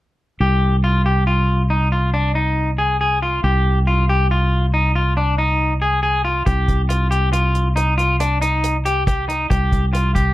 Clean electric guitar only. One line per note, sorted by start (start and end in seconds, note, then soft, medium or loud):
0.41 0.75 G4 medium
0.84 1.01 F4 medium
1.06 1.23 G4 medium
1.27 1.62 F4 medium
1.70 1.88 D#4 medium
1.92 2.10 F4 medium
2.14 2.31 D4 medium
2.35 2.70 D#4 medium
2.78 2.96 G#4 medium
3.01 3.18 G#4 medium
3.22 3.40 F4 soft
3.44 3.78 G4 medium
3.87 4.04 F4 medium
4.09 4.26 G4 medium
4.31 4.65 F4 medium
4.74 4.91 D#4 medium
4.95 5.13 F4 medium
5.17 5.34 D4 medium
5.38 5.73 D#4 medium
5.82 5.99 G#4 medium
6.03 6.20 G#4 medium
6.25 6.42 F4 medium
6.46 6.81 G4 medium
6.89 7.07 F4 medium
7.11 7.29 G4 medium
7.33 7.68 F4 medium
7.76 7.94 D#4 medium
7.98 8.15 F4 medium
8.20 8.38 D4 medium
8.42 8.76 D#4 medium
8.85 9.03 G4 medium
9.07 9.24 G4 medium
9.29 9.46 D#4 medium
9.50 9.85 G4 medium
9.93 10.11 F4 medium
10.15 10.32 G4 medium